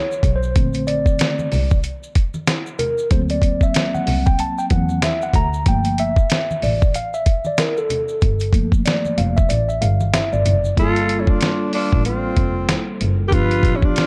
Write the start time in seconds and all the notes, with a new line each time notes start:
Already playing: C#5
0.12 maracas
0.23 B1, kick, closed hi-hat, low conga, maracas
0.36 C5
0.43 maracas
0.56 A#1 D3 A3 C4, kick, closed hi-hat, maracas
0.73 closed hi-hat, maracas
0.87 D5, closed hi-hat, maracas
1.06 kick, maracas
1.19 snare, closed hi-hat, maracas
1.39 high conga, maracas
1.52 C2, open hi-hat, low conga, maracas
1.71 kick, high conga, maracas
1.83 closed hi-hat, maracas
2.03 maracas
2.15 kick, closed hi-hat, maracas
2.34 high conga, maracas
2.47 snare, closed hi-hat, maracas
2.67 maracas
2.79 A#4, closed hi-hat, low conga, maracas
2.98 maracas
3.10 D2 F#3 A#3 C4 C5, kick, closed hi-hat, maracas
3.29 D5, closed hi-hat, maracas
3.42 kick, closed hi-hat, maracas
3.61 E5, kick, maracas
3.74 snare, closed hi-hat, maracas
3.94 F#5, high conga, maracas
4.07 C2, open hi-hat, low conga, maracas
4.26 G5, kick, high conga, maracas
4.39 A5, closed hi-hat, maracas
4.58 G5, maracas
4.70 E2 F#3 A#3 C4 F#5, kick, closed hi-hat, maracas
4.89 high conga, maracas
5.02 E5, snare, closed hi-hat, maracas
5.22 F#5, maracas
5.34 D2 A#5, kick, closed hi-hat, low conga, maracas
5.53 maracas
5.66 G1 F3 A3 A#3 G5, kick, closed hi-hat, maracas
5.85 closed hi-hat, maracas
5.98 E5, closed hi-hat, maracas
6.16 kick, maracas
6.30 snare, closed hi-hat, maracas
6.51 high conga, maracas
6.62 A1 D5, open hi-hat, low conga, maracas
6.82 kick, high conga, maracas
6.94 F5, closed hi-hat, maracas
7.14 E5, maracas
7.26 kick, closed hi-hat, maracas
7.45 D5, high conga, maracas
7.58 A#4, snare, closed hi-hat, maracas
7.77 A4, maracas
7.90 closed hi-hat, low conga, maracas
8.09 maracas
8.22 G1, kick, closed hi-hat, maracas
8.40 closed hi-hat, maracas
8.53 F3 A3 A#3, kick, closed hi-hat, maracas
8.72 kick, maracas
8.86 D5, snare, closed hi-hat, maracas
9.05 high conga, maracas
9.18 F1 F5, closed hi-hat, low conga, maracas
9.37 E5, kick, high conga, maracas
9.49 A1 D5, closed hi-hat, maracas
9.69 E5, maracas
9.82 G1 F5, closed hi-hat, maracas
10.00 high conga, maracas
10.13 E5, snare, closed hi-hat, maracas
10.32 G1 D5, high conga, maracas
10.45 F#1, closed hi-hat, high conga, low conga, maracas
10.64 maracas
10.76 G1 G3 A#3 F4 A4, kick, closed hi-hat
10.96 closed hi-hat
11.09 closed hi-hat
11.19 C#4 E4
11.27 D4 F4, kick
11.41 snare, closed hi-hat
11.72 D4 F4, open hi-hat
11.93 A1, kick
12.05 C4 F4, closed hi-hat
12.37 F1, kick, closed hi-hat
12.69 snare, closed hi-hat
13.01 F#1, closed hi-hat
13.27 F3 G4 A#4
13.31 G1 B3 D4 F4 G4 B4, kick, closed hi-hat
13.51 closed hi-hat
13.63 A1, kick, closed hi-hat
13.75 C#4 E4
13.82 D4 F4, kick
13.96 snare, closed hi-hat